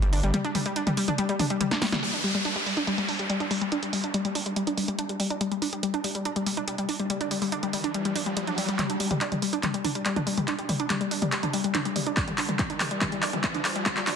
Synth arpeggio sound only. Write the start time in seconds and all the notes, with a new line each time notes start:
0.02 G3
0.13 D4
0.23 G3
0.34 G3
0.45 D4
0.55 G3
0.66 G3
0.76 D4
0.87 G3
0.97 G3
1.08 D4
1.18 G3
1.29 G3
1.39 D4
1.50 G3
1.61 G3
1.71 D4
1.82 G3
1.92 G3
2.03 G3
2.14 D4
2.24 G3
2.35 G3
2.45 D4
2.56 G3
2.66 G3
2.77 D4
2.87 G3
2.98 G3
3.08 D4
3.19 G3
3.30 G3
3.40 D4
3.51 G3
3.61 G3
3.72 D4
3.83 G3
3.93 G3
4.04 D4
4.14 G3
4.25 G3
4.35 D4
4.46 G3
4.56 G3
4.67 D4
4.77 G3
4.88 G3
4.99 D4
5.09 G3
5.20 G3
5.30 D4
5.41 G3
5.51 G3
5.62 D4
5.73 G3
5.83 G3
5.94 D4
6.04 G3
6.15 G3
6.25 D4
6.36 G3
6.46 G3
6.57 D4
6.68 G3
6.78 G3
6.89 D4
7.00 G3
7.10 G3
7.21 D4
7.31 G3
7.42 G3
7.52 D4
7.63 G3
7.73 G3
7.84 D4
7.94 G3
8.05 G3
8.15 D4
8.26 G3
8.37 G3
8.47 D4
8.58 G3
8.69 G3
8.79 G3
8.90 D4
9.00 G3
9.11 G3
9.21 D4
9.32 G3
9.42 G3
9.53 D4
9.63 G3
9.74 G3
9.84 D4
9.95 G3
10.06 G3
10.16 D4
10.27 G3
10.37 G3
10.48 D4
10.58 G3
10.69 G3
10.80 D4
10.90 G3
11.01 G3
11.11 D4
11.22 G3
11.32 G3
11.43 D4
11.53 G3
11.64 G3
11.75 D4
11.85 G3
11.96 G3
12.07 D4
12.17 G3
12.28 G3
12.38 D4
12.49 G3
12.59 G3
12.70 D4
12.80 G3
12.91 G3
13.01 G3
13.12 G3
13.23 D4
13.33 G3
13.44 G3
13.54 D4
13.65 G3
13.76 G3
13.86 G3
13.97 G3
14.07 D4